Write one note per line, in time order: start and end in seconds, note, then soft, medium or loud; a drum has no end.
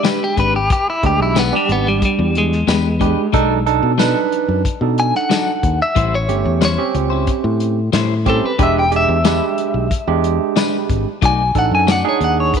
0.00 0.55 G#3 medium
0.00 0.24 G#3 medium
0.00 0.55 D4 medium
0.00 0.55 G4 medium
0.04 0.24 D4 medium
0.04 0.24 G4 medium
0.04 0.25 B4 medium
0.04 0.22 B4 medium
0.04 snare loud
0.04 closed hi-hat medium
0.04 tambourine loud
0.24 0.38 G4 medium
0.36 0.68 G#1 medium
0.36 0.57 G#3 medium
0.36 0.57 D4 medium
0.36 0.58 G4 medium
0.36 0.58 B4 medium
0.36 0.55 B4 medium
0.36 kick medium
0.36 closed hi-hat medium
0.56 0.71 G4 medium
0.70 0.88 G4 loud
0.70 kick loud
0.70 closed hi-hat medium
0.90 1.04 E4 medium
1.03 1.19 D2 medium
1.03 1.41 G#3 medium
1.03 1.41 D4 medium
1.03 1.41 G4 medium
1.03 1.21 G4 medium
1.03 kick medium
1.03 closed hi-hat medium
1.20 1.50 B1 medium
1.20 1.37 E4 medium
1.35 1.56 G#3 medium
1.35 1.54 B3 medium
1.35 1.56 D4 medium
1.35 1.56 G4 medium
1.35 1.56 B4 medium
1.35 snare loud
1.35 closed hi-hat medium
1.35 tambourine loud
1.53 2.52 G3 medium
1.53 1.70 G3 medium
1.53 2.52 D4 medium
1.53 2.52 G4 medium
1.69 2.00 G#1 medium
1.69 1.87 B3 medium
1.69 closed hi-hat medium
1.88 2.03 G3 medium
2.02 2.35 G3 medium
2.02 kick medium
2.02 closed hi-hat medium
2.19 2.64 E2 medium
2.35 3.64 G#3 medium
2.35 closed hi-hat medium
2.52 snare soft
2.67 3.14 E2 medium
2.67 2.87 G#3 medium
2.67 2.88 D4 medium
2.67 2.88 G4 medium
2.67 2.88 B4 medium
2.67 snare loud
2.67 closed hi-hat medium
2.67 tambourine loud
3.00 3.20 G#3 medium
3.00 3.25 G#3 medium
3.00 3.26 D4 medium
3.00 3.20 D4 medium
3.00 3.26 G4 medium
3.00 3.21 G4 medium
3.00 3.21 B4 medium
3.00 kick medium
3.00 closed hi-hat medium
3.17 muted fingered electric bass stroke soft
3.33 3.79 B1 medium
3.33 3.53 F#3 medium
3.33 3.53 D4 medium
3.33 3.59 D4 medium
3.33 3.53 D#4 medium
3.33 3.59 D#4 medium
3.33 3.59 A4 loud
3.33 3.54 A4 medium
3.33 kick loud
3.33 closed hi-hat medium
3.66 3.91 D4 medium
3.66 3.91 D#4 medium
3.66 3.91 A4 loud
3.66 closed hi-hat medium
3.83 4.13 B2 medium
3.98 4.18 F#3 medium
3.98 4.19 D4 medium
3.98 4.61 D4 medium
3.98 4.19 D#4 medium
3.98 4.61 D#4 medium
3.98 4.19 A4 medium
3.98 4.61 B4 medium
3.98 snare loud
3.98 closed hi-hat medium
3.98 tambourine loud
4.32 closed hi-hat medium
4.48 4.64 F#2 medium
4.65 kick medium
4.65 closed hi-hat medium
4.81 5.12 B2 medium
4.81 5.81 D4 medium
4.81 5.81 D#4 medium
4.81 5.81 A4 medium
4.98 5.15 G#5 loud
4.98 closed hi-hat medium
5.15 5.79 F#5 medium
5.15 snare soft
5.30 5.50 F#3 medium
5.30 5.50 D4 medium
5.30 5.50 D#4 medium
5.30 5.51 A4 medium
5.30 snare loud
5.30 closed hi-hat medium
5.30 tambourine loud
5.63 5.79 D#2 medium
5.63 kick medium
5.63 closed hi-hat medium
5.82 6.13 E5 medium
5.95 6.27 A1 loud
5.95 6.16 G3 medium
5.95 6.16 C#4 medium
5.95 6.16 E4 medium
5.95 6.16 C5 medium
5.95 kick loud
5.95 closed hi-hat medium
6.15 6.62 C#5 medium
6.29 6.44 G1 medium
6.29 6.66 A3 medium
6.29 6.66 C#4 medium
6.29 6.66 G4 medium
6.29 closed hi-hat medium
6.45 6.76 E2 medium
6.61 6.81 G3 medium
6.61 6.82 C#4 medium
6.61 6.82 E4 medium
6.61 6.82 C5 medium
6.61 6.95 C#5 loud
6.61 snare loud
6.61 closed hi-hat medium
6.61 tambourine loud
6.78 7.78 C4 medium
6.78 7.78 C#4 medium
6.78 7.78 G4 medium
6.94 7.25 C#2 medium
6.94 closed hi-hat medium
7.10 7.32 C#4 soft
7.10 7.31 E4 medium
7.10 7.30 C5 medium
7.27 kick medium
7.27 closed hi-hat medium
7.44 7.90 A2 medium
7.60 closed hi-hat medium
7.93 8.39 A2 loud
7.93 8.13 G3 medium
7.93 8.13 C#4 medium
7.93 8.13 E4 medium
7.93 8.14 C5 medium
7.93 snare loud
7.93 closed hi-hat medium
7.93 tambourine loud
8.26 8.46 G3 medium
8.26 8.51 C4 medium
8.26 8.51 C#4 medium
8.26 8.46 C#4 medium
8.26 8.47 E4 medium
8.26 8.51 G4 medium
8.26 8.44 A4 loud
8.26 8.47 C5 medium
8.26 kick medium
8.26 closed hi-hat medium
8.43 8.60 B4 medium
8.43 muted fingered electric bass stroke soft
8.58 9.05 E1 medium
8.58 8.79 G#3 medium
8.58 8.84 G#3 medium
8.58 8.79 D4 medium
8.58 8.84 D4 medium
8.58 8.84 G4 medium
8.58 8.79 G4 medium
8.58 8.79 B4 medium
8.58 kick loud
8.58 closed hi-hat medium
8.63 8.77 E5 loud
8.79 8.93 G5 medium
8.91 9.17 G#3 medium
8.91 9.17 D4 medium
8.91 9.17 G4 medium
8.91 closed hi-hat medium
8.96 10.87 E5 loud
9.08 9.39 E2 medium
9.24 9.44 G#3 medium
9.24 9.87 G#3 medium
9.24 9.87 D4 medium
9.24 9.45 D4 medium
9.24 9.87 G4 medium
9.24 9.45 G4 medium
9.24 9.45 B4 medium
9.24 snare loud
9.24 closed hi-hat medium
9.24 tambourine loud
9.58 closed hi-hat medium
9.74 9.89 B1 medium
9.91 kick medium
9.91 closed hi-hat medium
10.07 10.38 E2 medium
10.07 11.07 G#3 medium
10.07 11.07 D4 medium
10.07 11.07 G4 medium
10.24 closed hi-hat medium
10.56 10.76 G#3 medium
10.56 10.76 D4 medium
10.56 10.76 G4 medium
10.56 10.77 B4 medium
10.56 snare loud
10.56 closed hi-hat medium
10.56 tambourine loud
10.90 11.05 G#1 medium
10.90 kick medium
10.90 closed hi-hat medium
11.22 11.53 B1 loud
11.22 11.42 A3 medium
11.22 11.42 D#4 medium
11.22 11.42 F#4 medium
11.22 11.42 D5 medium
11.22 11.56 G#5 loud
11.22 kick loud
11.22 closed hi-hat medium
11.55 11.70 A1 medium
11.55 11.92 D4 medium
11.55 11.92 D#4 medium
11.55 11.92 A4 medium
11.55 11.73 F#5 medium
11.55 kick medium
11.55 closed hi-hat medium
11.71 12.02 F#2 medium
11.71 11.89 G#5 medium
11.87 12.07 A3 medium
11.87 12.08 D#4 medium
11.87 12.08 F#4 medium
11.87 12.08 D5 medium
11.87 snare loud
11.87 closed hi-hat medium
11.87 tambourine loud
11.92 12.06 F#5 medium
12.04 12.60 D4 medium
12.04 12.60 D#4 medium
12.04 12.60 G#4 loud
12.09 12.22 C#5 medium
12.20 12.51 D#2 medium
12.20 12.38 F#5 medium
12.20 closed hi-hat medium
12.40 12.54 C#5 medium
12.54 12.60 B4 medium
12.54 kick medium
12.54 closed hi-hat medium